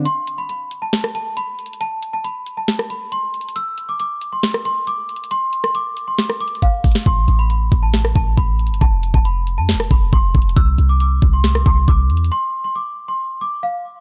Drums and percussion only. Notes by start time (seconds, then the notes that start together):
0.06 closed hi-hat
0.27 closed hi-hat
0.49 closed hi-hat
0.71 closed hi-hat
0.93 snare, closed hi-hat
1.04 cross-stick
1.15 closed hi-hat
1.37 closed hi-hat
1.59 closed hi-hat
1.66 closed hi-hat
1.73 closed hi-hat
1.81 closed hi-hat
2.03 closed hi-hat
2.24 closed hi-hat
2.46 closed hi-hat
2.68 snare, closed hi-hat
2.79 cross-stick
2.90 closed hi-hat
3.12 closed hi-hat
3.34 closed hi-hat
3.41 closed hi-hat
3.49 closed hi-hat
3.56 closed hi-hat
3.78 closed hi-hat
4.00 closed hi-hat
4.21 closed hi-hat
4.43 snare, closed hi-hat
4.54 cross-stick
4.65 closed hi-hat
4.87 closed hi-hat
5.09 closed hi-hat
5.16 closed hi-hat
5.24 closed hi-hat
5.31 closed hi-hat
5.53 closed hi-hat
5.64 cross-stick
5.75 closed hi-hat
5.97 closed hi-hat
6.19 snare, closed hi-hat
6.30 cross-stick
6.40 closed hi-hat
6.48 closed hi-hat
6.55 closed hi-hat
6.62 kick, closed hi-hat
6.84 kick, closed hi-hat, open hi-hat
6.92 snare, closed hi-hat
6.99 closed hi-hat
7.06 kick, closed hi-hat
7.28 closed hi-hat
7.50 closed hi-hat
7.72 kick, closed hi-hat
7.94 snare, closed hi-hat
8.05 cross-stick
8.16 kick, closed hi-hat
8.37 kick, closed hi-hat
8.59 closed hi-hat
8.67 closed hi-hat
8.74 closed hi-hat
8.81 kick, closed hi-hat
9.03 closed hi-hat
9.14 kick
9.25 closed hi-hat
9.47 closed hi-hat
9.69 snare, closed hi-hat
9.80 cross-stick
9.91 kick, closed hi-hat
10.13 kick, closed hi-hat
10.35 kick, closed hi-hat
10.42 closed hi-hat
10.49 closed hi-hat
10.57 kick, closed hi-hat
10.78 closed hi-hat
11.00 closed hi-hat
11.22 kick, closed hi-hat
11.44 snare, closed hi-hat
11.55 cross-stick
11.66 kick, closed hi-hat
11.88 kick, closed hi-hat
12.10 closed hi-hat
12.17 closed hi-hat
12.24 closed hi-hat